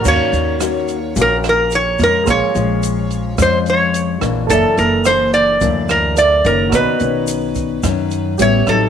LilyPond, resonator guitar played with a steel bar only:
\new Staff \with { instrumentName = "Resonator guitar played with a steel bar" } { \time 4/4 \key ees \dorian \tempo 4 = 108 des''2 bes'8 bes'8 des''8 bes'8 | des''2 c''8 des''4 r8 | a'8 bes'8 c''8 d''4 bes'8 d''8 bes'8 | b'2. cis''8 a'8 | }